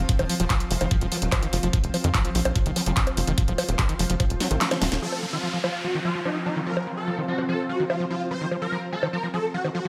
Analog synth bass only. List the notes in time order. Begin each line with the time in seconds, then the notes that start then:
0.19 D#1
0.40 D#1
0.71 F1
0.81 F1
1.01 D#1
1.22 D#1
1.53 F1
1.63 F1
1.84 F1
2.04 F2
2.35 A#1
2.45 A#1
2.66 F1
2.86 F1
3.17 F1
3.27 F1
3.48 D#1
3.69 D#1
3.99 F1
4.10 F1
4.30 D#1
4.51 A1
4.82 D#1
4.92 D#1